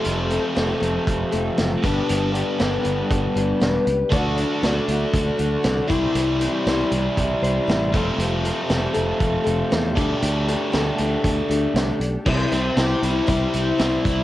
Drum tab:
CC |--------|--------|--------|--------|
HH |xxxxxxxx|xxxxxxxx|xxxxxxxx|xxxxxxxx|
SD |--o---o-|--o---o-|--o---o-|--o---o-|
BD |----o--o|----o---|o---o--o|----o--o|

CC |--------|--------|x-------|
HH |xxxxxxxx|xxxxxxxx|-xxxxxxx|
SD |--o---o-|--o---o-|--o---o-|
BD |----o--o|----o---|o---o--o|